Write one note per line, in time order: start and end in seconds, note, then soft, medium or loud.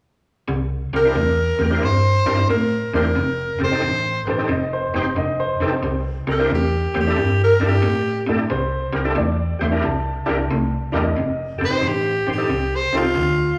0.48 0.84 C2 medium
0.48 0.88 C3 medium
0.48 0.89 G3 medium
0.93 1.11 C2 medium
0.93 1.14 C3 medium
0.93 1.14 G3 medium
0.93 0.99 G4 medium
0.93 0.99 A#4 medium
0.93 1.86 A#4 medium
1.05 1.16 D4 medium
1.05 1.16 E4 medium
1.05 1.16 G4 medium
1.05 1.16 C5 medium
1.15 1.50 E2 medium
1.15 1.55 C3 medium
1.15 1.55 A3 medium
1.59 1.78 E2 medium
1.59 1.80 C3 medium
1.59 1.80 A3 medium
1.59 1.66 G4 medium
1.59 1.66 A#4 medium
1.70 1.82 D4 medium
1.70 1.82 E4 medium
1.70 1.82 G4 medium
1.70 1.82 C5 medium
1.83 2.18 G2 medium
1.83 2.23 C3 medium
1.83 2.23 G3 medium
1.83 2.49 C5 medium
2.26 2.44 G2 medium
2.26 2.47 C3 medium
2.26 2.47 G3 medium
2.26 2.38 D4 medium
2.26 2.38 E4 medium
2.26 2.38 G4 medium
2.26 2.38 A#4 medium
2.48 2.84 A2 medium
2.48 2.89 C3 medium
2.48 2.90 A3 medium
2.48 2.93 A#4 medium
2.94 3.12 E2 medium
2.94 3.14 C3 medium
2.94 3.14 A3 medium
2.94 3.05 D4 medium
2.94 3.06 E4 medium
2.94 3.06 G4 medium
2.94 3.59 A#4 medium
2.94 3.06 C5 medium
3.15 3.51 F1 medium
3.15 3.56 F2 medium
3.15 3.56 C3 medium
3.59 3.79 F1 medium
3.59 3.80 F2 medium
3.59 3.80 C3 medium
3.59 3.66 G4 medium
3.59 3.66 A4 medium
3.64 4.27 C5 medium
3.71 3.83 C4 medium
3.71 3.83 D#4 medium
3.71 3.83 G4 medium
3.71 3.83 A4 medium
3.82 4.19 A1 medium
3.82 4.22 F2 medium
3.82 4.22 D3 medium
4.25 4.45 A1 loud
4.25 4.47 F2 medium
4.25 4.48 D3 medium
4.25 4.33 G4 medium
4.25 4.33 A4 medium
4.25 4.31 B4 medium
4.29 4.50 C5 medium
4.38 4.49 C4 medium
4.38 4.50 D#4 medium
4.38 4.50 G4 medium
4.38 4.50 A4 medium
4.48 4.84 F1 medium
4.48 4.89 F2 medium
4.48 4.89 C3 medium
4.48 4.72 D#5 medium
4.73 4.93 C5 medium
4.94 5.12 F1 medium
4.94 5.14 F2 medium
4.94 5.15 C3 medium
4.94 5.06 C4 medium
4.94 5.06 D#4 medium
4.94 5.06 G4 medium
4.94 5.16 C5 medium
4.94 5.06 C5 medium
5.16 5.51 F1 medium
5.16 5.56 F2 medium
5.16 5.56 D3 medium
5.16 5.39 D#5 medium
5.40 5.61 C5 medium
5.58 5.78 F1 medium
5.58 5.81 F2 medium
5.58 5.81 D3 medium
5.58 5.72 C4 medium
5.58 5.73 D#4 medium
5.58 5.73 A4 medium
5.58 5.64 B4 medium
5.62 5.73 G4 medium
5.62 5.98 C5 medium
5.83 6.18 C2 medium
5.83 6.23 C3 medium
5.83 6.23 G3 medium
6.27 6.45 C2 medium
6.27 6.48 C3 medium
6.27 6.48 G3 medium
6.27 6.34 G4 medium
6.27 6.34 A#4 medium
6.31 6.51 A#4 medium
6.39 6.50 D4 medium
6.39 6.50 E4 medium
6.39 6.50 G4 medium
6.39 6.50 C5 medium
6.50 6.86 E2 medium
6.50 6.90 C3 medium
6.50 6.90 A3 medium
6.55 6.96 G4 medium
6.94 7.13 E2 medium
6.94 7.15 C3 medium
6.94 7.15 A3 medium
6.94 7.00 G4 medium
6.94 7.00 C5 medium
7.00 7.41 G4 medium
7.07 7.18 D4 medium
7.07 7.18 E4 medium
7.07 7.18 G4 medium
7.07 7.18 A4 medium
7.16 7.52 G2 medium
7.16 7.56 C3 medium
7.16 7.57 G3 medium
7.44 7.68 A#4 medium
7.60 7.79 G2 medium
7.60 7.81 C3 medium
7.60 7.81 G3 medium
7.60 7.72 D4 medium
7.60 7.72 E4 medium
7.60 7.72 G4 medium
7.60 7.72 A4 medium
7.66 8.29 G4 medium
7.82 8.20 A2 medium
7.82 8.23 C3 medium
7.82 8.23 A3 medium
8.26 8.46 A2 medium
8.26 8.47 C3 medium
8.26 8.48 A3 medium
8.26 8.40 D4 medium
8.26 8.39 E4 medium
8.26 8.40 G4 medium
8.26 8.40 A4 medium
8.50 8.86 C2 medium
8.50 8.90 C3 medium
8.50 8.90 G3 medium
8.50 9.15 C5 medium
8.93 9.13 C2 medium
8.93 9.14 C3 medium
8.93 9.14 G3 medium
8.93 9.00 G4 medium
8.93 9.00 A#4 medium
9.04 9.16 D4 medium
9.04 9.16 E4 medium
9.04 9.17 G4 medium
9.04 9.17 A4 medium
9.15 9.53 E2 medium
9.15 9.56 C3 medium
9.15 9.56 A3 medium
9.15 9.60 D5 medium
9.59 9.79 E2 medium
9.59 9.82 C3 medium
9.59 9.82 A3 medium
9.59 9.66 G4 medium
9.59 9.67 C5 medium
9.59 9.84 E5 medium
9.71 9.83 D4 medium
9.71 9.84 E4 medium
9.71 9.84 G4 medium
9.71 9.83 A#4 medium
9.83 10.20 C2 medium
9.83 10.23 C3 medium
9.83 10.23 G3 medium
9.83 10.92 A5 medium
10.26 10.46 C2 medium
10.26 10.48 C3 medium
10.26 10.49 G3 medium
10.26 10.38 D4 medium
10.26 10.38 E4 medium
10.26 10.38 G4 medium
10.26 10.39 A#4 medium
10.51 10.86 C2 medium
10.51 10.90 C3 medium
10.51 10.90 A3 medium
10.92 11.12 E2 medium
10.92 11.14 C3 medium
10.92 11.15 A3 medium
10.92 11.05 D4 medium
10.92 11.05 E4 medium
10.92 11.05 G4 medium
10.92 11.05 A#4 medium
10.92 11.53 D#5 medium
11.17 11.52 F1 medium
11.17 11.57 F2 medium
11.17 11.57 C3 medium
11.58 11.79 F1 medium
11.58 11.81 F2 medium
11.58 11.81 C3 medium
11.58 11.65 G4 medium
11.58 11.65 A4 medium
11.65 11.89 C5 medium
11.70 11.83 C4 medium
11.70 11.83 D#4 medium
11.70 11.83 G4 medium
11.70 11.83 C5 medium
11.82 12.18 A1 medium
11.82 12.23 F2 medium
11.82 12.23 D3 medium
11.88 12.29 G4 medium
12.27 12.46 A1 medium
12.27 12.48 F2 medium
12.27 12.48 D3 medium
12.27 12.33 G4 medium
12.27 12.33 C5 medium
12.33 12.78 G4 medium
12.38 12.50 C4 medium
12.38 12.50 D#4 medium
12.38 12.50 G4 medium
12.38 12.50 A4 medium
12.50 12.85 C2 medium
12.50 12.90 F2 medium
12.50 12.90 C3 medium
12.76 12.96 C5 medium
12.93 13.12 C2 medium
12.93 13.13 F2 medium
12.93 13.14 C3 medium
12.93 13.05 C4 medium
12.93 13.05 D#4 medium
12.93 13.06 G4 medium
12.93 13.06 A4 medium
12.97 13.59 F4 loud
13.15 13.52 D2 medium
13.15 13.55 F2 medium
13.15 13.55 D3 medium